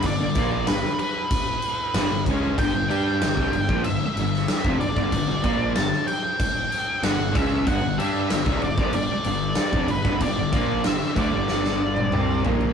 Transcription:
<<
  \new Staff \with { instrumentName = "Lead electric guitar" } { \time 4/4 \key c \lydian \tempo 4 = 94 d''4 b'8 b'2 r8 | g''8 g''4. e''4. d''8~ | d''4 a''8 g''4. fis''8 e''8 | fis''8 e''4 d''8 d''4. b'8 |
d''4 e''8 d''2 r8 | }
  \new Staff \with { instrumentName = "Distorted electric guitar" } { \clef bass \time 4/4 \key c \lydian <g, d>16 <g, d>16 <bes, f bes>8 <g, d>16 r4. r16 <g, d>16 <g, d>16 <cis aes cis'>8 | <g, d>16 <g, d>16 <g d' g'>8 <g, d>16 <c g>16 <g, d>16 <bes, f>16 <g, d>16 r16 <g, d>8 r16 <f, c>16 <g, d>16 <g, d>16 | <g, d>16 <g, d>16 <bes, f bes>8 <g, d>16 r4. r16 <g, d>16 <g, d>16 <cis aes cis'>8 | <g, d>16 <g, d>16 <g d' g'>8 <g, d>16 <c g>16 <g, d>16 <bes, f>16 <g, d>16 r16 <g, d>8 r16 <f, c>16 <g, d>16 <g, d>16 |
<g, d>16 <g, d>16 <bes, f bes>8 <g, d>16 r16 <d a>16 <g, d g>4~ <g, d g>16 <c g c'>8 <bes, f bes>8 | }
  \new Staff \with { instrumentName = "Distorted electric guitar" } { \clef bass \time 4/4 \key c \lydian <g, d>16 <g, d>16 <bes, f bes>8 <g, d>16 r4. r16 <g, d>16 <g, d>16 <cis aes cis'>8 | <g, d>16 <g, d>16 <g d' g'>8 <g, d>16 <c g>16 <g, d>16 <bes, f>16 <g, d>16 r16 <g, d>8 r16 <f, c>16 <g, d>16 <g, d>16 | <g, d>16 <g, d>16 <bes, f bes>8 <g, d>16 r4. r16 <g, d>16 <g, d>16 <cis aes cis'>8 | <g, d>16 <g, d>16 <g d' g'>8 <g, d>16 <c g>16 <g, d>16 <bes, f>16 <g, d>16 r16 <g, d>8 r16 <f, c>16 <g, d>16 <g, d>16 |
<g, d>16 <g, d>16 <bes, f bes>8 <g, d>16 r16 <d a>16 <g, d g>4~ <g, d g>16 <c g c'>8 <bes, f bes>8 | }
  \new Staff \with { instrumentName = "Picked electric bass" } { \clef bass \time 4/4 \key c \lydian g,,16 g,,16 bes,,8 g,,16 r4. r16 g,,16 g,,16 cis,8 | g,,16 g,,16 g,8 g,,16 c,16 g,,16 bes,,16 g,,16 r16 g,,8 r16 f,,16 g,,16 g,,16 | g,,16 g,,16 bes,,8 g,,16 r4. r16 g,,16 g,,16 cis,8 | g,,16 g,,16 g,8 g,,16 c,16 g,,16 bes,,16 g,,16 r16 g,,8 r16 f,,16 g,,16 g,,16 |
g,,16 g,,16 bes,,8 g,,16 r16 d,16 g,,4~ g,,16 c,8 bes,,8 | }
  \new DrumStaff \with { instrumentName = "Drums" } \drummode { \time 4/4 <cymc bd>8 <cymc bd>8 <cymc sn>16 sn16 cymc8 <cymc bd>8 cymc8 <cymc sn>8 <cymc bd>8 | <cymc bd>8 cymc8 <cymc sn>16 <bd sn>16 cymc16 bd16 cymc8 cymc16 sn16 <cymc sn>16 bd16 cymc16 bd16 | <cymc bd>8 <cymc bd>8 <cymc sn>16 sn16 cymc8 <cymc bd>8 cymc8 <cymc sn>8 <cymc bd>8 | <cymc bd>8 cymc8 <cymc sn>16 <bd sn>16 cymc16 bd16 cymc8 cymc8 <cymc sn>16 bd16 cymc16 bd16 |
<cymc bd>8 <cymc bd>8 <cymc sn>16 sn16 <cymc bd>8 sn16 sn8 tommh16 toml8 tomfh16 tomfh16 | }
>>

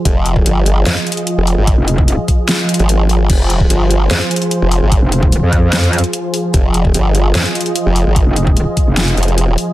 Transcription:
<<
  \new Staff \with { instrumentName = "Supersaw synth" } { \time 4/4 \key f \minor \tempo 4 = 148 << { ees''1~ | ees''1 | c''1~ | c''1 |
ees''1~ | ees''1 | } \\ { <f f' aes'>1~ | <f f' aes'>1~ | <f f' aes'>1~ | <f f' aes'>1~ |
<f f' aes'>1~ | <f f' aes'>1 | } >> }
  \new Staff \with { instrumentName = "Wobble bass" } { \clef bass \time 4/4 \key f \minor r2 f,16 r4. r16 | r16 f,,4 r2 r8. | r2 f,16 r4. r16 | r16 f,,4 f,4. r4 r16 |
r2 f,16 r4. r16 | r16 f,,4 r8 f,,8. r4. | }
  \new Staff \with { instrumentName = "Wobble bass" } { \clef bass \time 4/4 \key f \minor f,,4 g,,4 r4 r16 f,,8 aes,,16~ | aes,,16 r2 r8 aes,,4~ aes,,16 | f,,4 g,,4 r4 r16 f,,8 aes,,16~ | aes,,16 r2. r8. |
f,,4 g,,4 r4 r16 f,,8 aes,,16~ | aes,,16 r2 r16 f,,4 r8 | }
  \new DrumStaff \with { instrumentName = "Drums" } \drummode { \time 4/4 <hh bd>8 hh16 bd16 hh8 hh8 <hh sn>16 hh16 hh32 hh32 hh16 hh8 hho8 | <hh bd>8 hh16 bd16 hh8 <hh bd>8 <hh sn>16 hh16 hh32 hh32 hh16 hh8 hho8 | <cymc hh bd>8 hh16 bd16 hh8 hh8 <hh sn>16 hh16 hh32 hh32 hh16 hh8 hho8 | <hh bd>8 hh16 bd16 hh8 <hh bd>8 <hh sn>16 hh16 hh32 hh32 hh16 hh8 hho8 |
<hh bd>8 hh16 bd16 hh8 hh8 <hh sn>16 hh16 hh32 hh32 hh16 hh8 hho8 | <hh bd>8 hh16 bd16 hh8 <hh bd>8 <hh sn>16 hh16 hh32 hh32 hh16 hh8 hho8 | }
>>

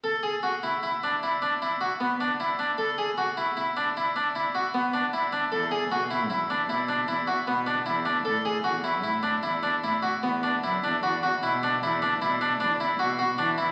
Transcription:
<<
  \new Staff \with { instrumentName = "Harpsichord" } { \time 7/4 \key e \mixolydian \tempo 4 = 153 a'8 gis'8 fis'8 e'8 e'8 d'8 e'8 d'8 e'8 fis'8 b8 d'8 e'8 d'8 | a'8 gis'8 fis'8 e'8 e'8 d'8 e'8 d'8 e'8 fis'8 b8 d'8 e'8 d'8 | a'8 gis'8 fis'8 e'8 e'8 d'8 e'8 d'8 e'8 fis'8 b8 d'8 e'8 d'8 | a'8 gis'8 fis'8 e'8 e'8 d'8 e'8 d'8 e'8 fis'8 b8 d'8 e'8 d'8 |
fis'8 fis'8 e'8 d'8 e'8 d'8 e'8 d'8 d'8 e'8 fis'8 fis'8 d'8 e'8 | }
  \new Staff \with { instrumentName = "Cello" } { \clef bass \time 7/4 \key e \mixolydian r1. r4 | r1. r4 | e,4 b,4 e,4 b,4 e,8 r8 b,4 e,4 | a,4 e,4 a,4 e,4 a,8 r8 e,4 fis,8 e,8 |
e,4 b,8 r8 e,4 b,4 e,4 b,4 e4 | }
>>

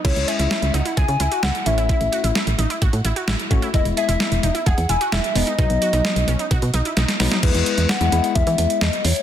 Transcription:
<<
  \new Staff \with { instrumentName = "Soft synth lead" } { \time 4/4 \key e \major \tempo 4 = 130 cis''8 e''8 e''8 fis''8 gis''8 gis''8 fis''8 e''8~ | e''4. r2 r8 | dis''8 e''4 e''8 fis''8 gis''8 e''8 dis''8~ | dis''2. r4 |
b'4 fis''4 e''4 dis''8 cis''8 | }
  \new Staff \with { instrumentName = "Synth arpeggio sound" } { \time 4/4 \key e \major e'8 gis'16 e'16 e'8 dis'16 e'16 gis'8 e'16 fis'16 e'8 cis'16 e'16 | e'8 fis'16 e'16 e'8 dis'16 e'16 fis'8 e'16 fis'16 e'8 cis'16 e'16 | e'8 gis'16 e'16 e'8 dis'16 e'16 gis'8 e'16 fis'16 e'8 b16 dis'16 | dis'8 fis'16 dis'16 dis'8 cis'16 dis'16 fis'8 dis'16 e'16 dis'8 b16 dis'16 |
r1 | }
  \new Staff \with { instrumentName = "Tine electric piano" } { \time 4/4 \key e \major <gis cis' e'>4. r2 <a cis' e'>8~ | <a cis' e'>4 r2 r8 <a cis' fis'>8 | <gis b e'>4. r2 <gis b dis'>8 | <fis b dis'>4. r2 <fis b dis'>8 |
<gis b e'>4 r16 <gis b e'>16 <gis b e'>4. r4 | }
  \new Staff \with { instrumentName = "FM bass" } { \clef bass \time 4/4 \key e \major cis,16 cis,16 r16 cis,16 r16 cis,16 cis,16 r16 cis,16 cis16 cis,16 r16 cis,16 r16 a,,8~ | a,,16 a,,16 r16 a,,16 r16 a,,16 a,,16 r16 a,,16 a,16 a,,16 r16 a,,16 r16 a,,16 r16 | e,,16 e,,16 r16 e,,16 r16 e,,16 e,,16 r16 e,,16 e,16 e,,16 r16 e,,16 r16 e,,16 r16 | b,,16 b,,16 r16 b,,16 r16 b,,16 b,,16 r16 b,,16 b,16 b,,16 r16 b,,16 r16 b,,16 r16 |
e,16 e,16 r16 e,16 r16 e,16 e,16 r16 e,16 e16 e,16 r16 e,16 r16 e,16 r16 | }
  \new DrumStaff \with { instrumentName = "Drums" } \drummode { \time 4/4 <cymc hh bd>16 hh16 hh16 hh16 <hh sn>16 hh16 hh16 hh16 <hh bd>16 hh16 hh16 hh16 <hh sn>16 hh16 hh16 hh16 | <hh bd>16 hh16 hh16 hh16 <hh sn>16 hh16 hh16 hh16 <hh bd>16 hh16 hh16 hh16 <hh sn>16 hh16 <hh bd>16 hh16 | <hh bd>16 hh16 hh16 hh16 <hh sn>16 hh16 hh16 hh16 <hh bd>16 hh16 hh16 hh16 <hh sn>16 hh16 hho16 hh16 | <hh bd>16 hh16 hh16 hh16 <hh sn>16 hh16 hh16 hh16 <hh bd>16 hh16 hh16 hh16 <hh sn>16 <hh sn>16 <hho sn>16 <hh sn>16 |
<cymc hh bd>16 hh16 hh16 hh16 <hh sn>16 hh16 hh16 hh16 <hh bd>16 hh16 hh16 hh16 <hh sn>16 hh16 hho16 hh16 | }
>>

